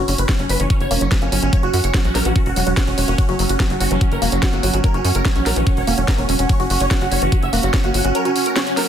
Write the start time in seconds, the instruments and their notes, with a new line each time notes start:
Already playing: synth texture C#4, ambient pad F#5
0.08 analog synth bass F#1, supersaw synth C#4, synth arpeggio sound F#4, open hi-hat
0.18 analog synth bass F#1, supersaw synth B4, closed hi-hat
0.29 synth arpeggio sound F#3, supersaw synth C#4, kick, snare, closed hi-hat
0.39 analog synth bass F#1, synth arpeggio sound F#3, supersaw synth C#4, closed hi-hat
0.49 analog synth bass F#1, synth arpeggio sound F#3, supersaw synth B4, open hi-hat
0.60 analog synth bass F#1, synth arpeggio sound E3, supersaw synth C#4, closed hi-hat
0.70 supersaw synth C#4, kick, closed hi-hat
0.80 analog synth bass F#1, supersaw synth C#5, closed hi-hat
0.91 analog synth bass E1, synth arpeggio sound A#3, supersaw synth C#4, open hi-hat
1.01 analog synth bass F#1, synth arpeggio sound F#3, supersaw synth C#4, closed hi-hat
1.11 synth arpeggio sound F#3, supersaw synth B4, kick, snare, closed hi-hat
1.22 analog synth bass G1, synth arpeggio sound A#3, supersaw synth C#4, closed hi-hat
1.32 analog synth bass G1, synth arpeggio sound F#3, supersaw synth C#4, open hi-hat
1.43 analog synth bass G1, synth arpeggio sound C#4, supersaw synth C#4, closed hi-hat
1.53 synth arpeggio sound F#3, supersaw synth C#5, kick, closed hi-hat
1.63 analog synth bass F#1, supersaw synth F#4, synth arpeggio sound F#4, closed hi-hat
1.74 analog synth bass F#2, supersaw synth F#4, synth arpeggio sound F#4, open hi-hat
1.84 analog synth bass F#1, supersaw synth C#5, closed hi-hat
1.94 synth arpeggio sound F#3, supersaw synth F#4, kick, snare, closed hi-hat
2.05 analog synth bass A#1, synth arpeggio sound F#3, supersaw synth F#4, closed hi-hat
2.15 analog synth bass A#1, synth arpeggio sound F#3, supersaw synth A#4, snare, open hi-hat
2.25 analog synth bass A#1, synth arpeggio sound E3, supersaw synth F#4, closed hi-hat
2.36 supersaw synth F#4, kick, closed hi-hat
2.46 analog synth bass E1, supersaw synth F#4, closed hi-hat
2.56 analog synth bass E1, synth arpeggio sound F#3, supersaw synth F#4, open hi-hat
2.67 analog synth bass E1, synth arpeggio sound F#3, supersaw synth F#4, closed hi-hat
2.77 supersaw synth F#4, kick, snare, closed hi-hat
2.87 analog synth bass E1, synth arpeggio sound C#4, supersaw synth F#4, closed hi-hat
2.98 analog synth bass E1, synth arpeggio sound F#3, supersaw synth F#4, open hi-hat
3.08 analog synth bass E1, synth arpeggio sound A#3, supersaw synth F#4, closed hi-hat
3.18 synth arpeggio sound F#3, supersaw synth F#4, kick, closed hi-hat
3.29 analog synth bass F#1, supersaw synth F#3, synth arpeggio sound F#4, closed hi-hat
3.39 analog synth bass F#1, supersaw synth F#3, synth arpeggio sound F#4, open hi-hat
3.49 analog synth bass F#1, supersaw synth F#4, closed hi-hat
3.60 synth arpeggio sound F#3, supersaw synth F#3, kick, snare, closed hi-hat
3.70 analog synth bass F#1, synth arpeggio sound F#3, supersaw synth F#3, closed hi-hat
3.80 analog synth bass F#1, synth arpeggio sound F#3, supersaw synth F#4, open hi-hat
3.91 analog synth bass F#1, synth arpeggio sound E3, supersaw synth F#3, closed hi-hat
4.01 supersaw synth F#3, kick, closed hi-hat
4.12 analog synth bass F#1, supersaw synth A#4, closed hi-hat
4.22 analog synth bass E1, supersaw synth F#3, synth arpeggio sound A#3, open hi-hat
4.32 analog synth bass F#1, synth arpeggio sound F#3, supersaw synth F#3, closed hi-hat
4.43 synth arpeggio sound F#3, supersaw synth F#4, kick, snare, closed hi-hat
4.53 analog synth bass G1, supersaw synth F#3, synth arpeggio sound A#3, closed hi-hat
4.63 analog synth bass G1, synth arpeggio sound F#3, supersaw synth F#3, open hi-hat
4.74 analog synth bass G1, supersaw synth F#3, synth arpeggio sound C#4, closed hi-hat
4.84 synth arpeggio sound F#3, supersaw synth A#4, kick, closed hi-hat
4.94 analog synth bass F#1, supersaw synth C#4, synth arpeggio sound F#4, closed hi-hat
5.05 analog synth bass F#2, supersaw synth C#4, synth arpeggio sound F#4, open hi-hat
5.15 analog synth bass F#1, supersaw synth A#4, closed hi-hat
5.25 synth arpeggio sound F#3, supersaw synth C#4, kick, snare, closed hi-hat
5.36 analog synth bass A#1, synth arpeggio sound F#3, supersaw synth C#4, closed hi-hat
5.46 analog synth bass A#1, synth arpeggio sound F#3, supersaw synth A#4, snare, open hi-hat
5.56 analog synth bass A#1, synth arpeggio sound E3, supersaw synth C#4, closed hi-hat
5.67 supersaw synth C#4, kick, closed hi-hat
5.77 analog synth bass E1, supersaw synth C#5, closed hi-hat
5.87 analog synth bass E1, synth arpeggio sound A#3, supersaw synth C#4, open hi-hat
5.98 analog synth bass E1, synth arpeggio sound F#3, supersaw synth C#4, closed hi-hat
6.08 synth arpeggio sound F#3, supersaw synth A#4, kick, snare, closed hi-hat
6.18 analog synth bass E1, synth arpeggio sound A#3, supersaw synth C#4, closed hi-hat
6.29 analog synth bass E1, synth arpeggio sound F#3, supersaw synth C#4, open hi-hat
6.39 analog synth bass E1, supersaw synth C#4, synth arpeggio sound C#4, closed hi-hat
6.49 synth arpeggio sound F#3, supersaw synth C#5, kick, closed hi-hat
6.60 analog synth bass F#1, supersaw synth F#4, synth arpeggio sound F#4, closed hi-hat
6.70 analog synth bass F#1, supersaw synth F#4, synth arpeggio sound F#4, open hi-hat
6.80 analog synth bass F#1, supersaw synth C#5, closed hi-hat
6.91 synth arpeggio sound F#3, supersaw synth F#4, kick, snare, closed hi-hat
7.01 analog synth bass F#1, synth arpeggio sound F#3, supersaw synth F#4, closed hi-hat
7.11 analog synth bass F#1, synth arpeggio sound F#3, supersaw synth C#5, open hi-hat
7.22 analog synth bass F#1, synth arpeggio sound E3, supersaw synth F#4, closed hi-hat
7.32 supersaw synth F#4, kick, closed hi-hat
7.43 analog synth bass F#1, supersaw synth E5, closed hi-hat
7.53 analog synth bass E1, synth arpeggio sound A#3, supersaw synth F#4, open hi-hat
7.63 analog synth bass F#1, synth arpeggio sound F#3, supersaw synth F#4, closed hi-hat
7.74 synth arpeggio sound F#3, supersaw synth C#5, kick, snare, closed hi-hat
7.84 analog synth bass G1, synth arpeggio sound A#3, supersaw synth F#4, closed hi-hat
7.94 analog synth bass G1, synth arpeggio sound F#3, supersaw synth F#4, open hi-hat
8.05 analog synth bass G1, synth arpeggio sound C#4, supersaw synth F#4, closed hi-hat
8.15 synth arpeggio sound F#3, supersaw synth A#4, closed hi-hat
8.25 supersaw synth C#4, synth arpeggio sound F#4, closed hi-hat
8.36 supersaw synth C#4, synth arpeggio sound F#4, open hi-hat
8.46 supersaw synth A#4, closed hi-hat
8.56 synth arpeggio sound F#3, supersaw synth C#4, snare, closed hi-hat
8.67 synth arpeggio sound F#3, supersaw synth C#4, closed hi-hat
8.77 synth arpeggio sound F#3, supersaw synth A#4, snare, open hi-hat